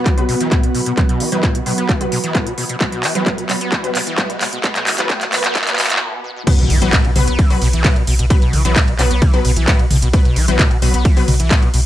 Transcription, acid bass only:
0.06 E3
0.18 B2
0.29 B2
0.41 E3
0.52 A2
0.64 B2
0.75 B2
0.86 B2
0.97 B2
1.09 B2
1.20 E3
1.32 E3
1.43 A2
1.55 B2
1.66 B2
1.78 B3
1.89 E3
2.01 B2
2.12 B2
2.24 E3
2.35 A2
2.47 B2
2.58 B2
2.69 B2
2.81 B2
2.92 B2
3.03 E3
3.15 E3
3.26 A2
3.38 B2
3.49 B2
3.61 B3
3.72 E3
3.84 B2
3.95 B2
4.07 E3
4.18 A2
4.30 B2
4.41 B2
4.53 B2
4.64 B2
4.76 B2
4.87 E3
4.99 E3
5.10 A2
5.21 B2
5.32 B2
5.44 B3
5.55 E3
5.67 B2
5.78 B2
5.90 E3
6.01 A2
6.13 B2
6.24 B2
6.36 B2
6.47 B2
6.59 B2
6.70 E3
6.82 E3
6.93 A2
7.05 B2
7.16 B2
7.28 B3
7.39 E3
7.50 B2
7.62 B2
7.73 E3
7.85 A2
7.96 B2
8.07 B2
8.19 B2
8.30 B2
8.42 B2
8.53 E3
8.65 E3
8.76 A2
8.88 B2
8.99 B2
9.11 B3
9.22 E3
9.34 B2
9.45 B2
9.57 E3
9.68 A2
9.80 B2
9.91 B2
10.02 B2
10.14 B2
10.25 B2
10.36 E3
10.48 E3
10.59 A2
10.71 B2
10.82 B2
10.94 B3
11.05 E3
11.17 B2
11.28 B2
11.40 E3
11.51 A2
11.63 B2
11.74 B2

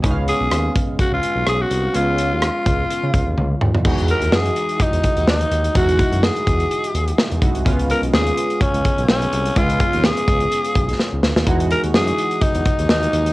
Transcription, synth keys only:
0.02 G#3 B3 C#4 D#4
0.11 F5
1.93 G#3 B3 C#4 F4
3.84 E3 G#3 D#4 F#4
5.75 G#3 D#4 E4 F#4
7.42 G#3 D#4 E4 F#4
7.65 G#3 B3 C#4 F4
9.55 G#3 B3 C#4 F4
11.46 E3 G#3 D#4 F#4

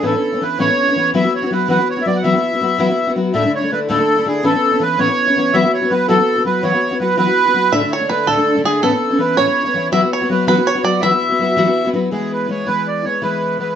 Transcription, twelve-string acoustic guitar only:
0.03 A2 E3 B3 C#4 E4
0.13 B3 C#4 E4
0.32 B3 C#4 E4
0.41 E3 B3 C#4 E4
0.58 A2 E3 B3 C#4 E4
0.69 B3 C#4 E4
0.88 B3 C#4 E4
0.96 E3 B3 C#4 E4
1.14 E3 F#3 B3 E4 F#4
1.24 B3 E4 F#4
1.42 B3 E4 F#4
1.51 F#3 B3 E4 F#4
1.68 E3 F#3 B3 E4 F#4
1.79 B3 E4 F#4
1.97 B3 E4 F#4
2.05 F#3 B3 E4 F#4
2.24 E3 F#3 B3 E4 F#4
2.33 B3 E4 F#4
2.52 B3 E4 F#4
2.61 F#3 B3 E4 F#4
2.78 E3 F#3 B3 E4 F#4
2.89 B3 E4 F#4
3.07 B3 E4 F#4
3.16 F#3 B3 E4 F#4
3.33 D2 A2 D3 A3 D4 E4
3.43 D3 A3 D4 E4
3.62 D3 A3 D4 E4
3.71 D3 A3 D4 E4
3.88 D2 A2 D3 A3 D4 E4
3.98 D3 A3 D4 E4
4.16 D3 A3 D4 E4
4.25 D3 A3 D4 E4
4.43 A2 E3 B3 C#4 E4
4.52 B3 C#4 E4
4.71 B3 C#4 E4
4.80 E3 B3 C#4 E4
4.98 A2 E3 B3 C#4 E4
5.08 B3 C#4 E4
5.27 B3 C#4 E4
5.36 E3 B3 C#4 E4
5.53 E3 F#3 B3 E4 F#4
5.63 B3 E4 F#4
5.81 B3 E4 F#4
5.90 F#3 B3 E4 F#4
6.08 E3 F#3 B3 E4 F#4
6.18 B3 E4 F#4
6.36 B3 E4 F#4
6.45 F#3 B3 E4 F#4
6.63 E3 F#3 B3 E4 F#4
6.72 B3 E4 F#4
6.91 B3 E4 F#4
7.00 F#3 B3 E4 F#4
7.17 E3 F#3 B3 E4 F#4
7.27 B3 E4 F#4
7.45 B3 E4 F#4
7.54 F#3 B3 E4 F#4
7.72 D2 A2 D3 A3 D4 E4
7.81 A3 D4 E4
8.00 D3 A3 D4 E4
8.09 D3 A3 D4 E4
8.26 D2 A2 D3 A3 D4 E4
8.36 D3 A3 D4 E4
8.55 D3 A3 D4 E4
8.64 D3 A3 D4 E4
8.82 A2 E3 B3 C#4 E4
8.91 B3 C#4 E4
9.10 B3 C#4 E4
9.18 E3 B3 C#4 E4
9.37 A2 E3 B3 C#4 E4
9.47 B3 C#4 E4
9.64 B3 C#4 E4
9.74 E3 B3 C#4 E4
9.92 E3 F#3 B3 E4 F#4
10.02 B3 E4 F#4
10.21 B3 E4 F#4
10.29 F#3 B3 E4 F#4
10.47 E3 F#3 B3 E4 F#4
10.57 B3 E4 F#4
10.75 B3 E4 F#4
10.84 F#3 B3 E4 F#4
11.02 E3 F#3 B3 E4 F#4
11.11 B3 E4 F#4
11.29 B3 E4 F#4
11.39 F#3 B3 E4 F#4
11.56 E3 F#3 B3 E4 F#4
11.66 B3 E4 F#4
11.84 B3 E4 F#4
11.93 F#3 B3 E4 F#4
12.11 E3 G#3 B3 E4
12.48 E3 G#3 B3 E4
12.66 E3 G#3 B3 E4
13.04 G#3 B3 E4
13.22 E3 G#3 B3 E4
13.59 E3 G#3 B3 E4

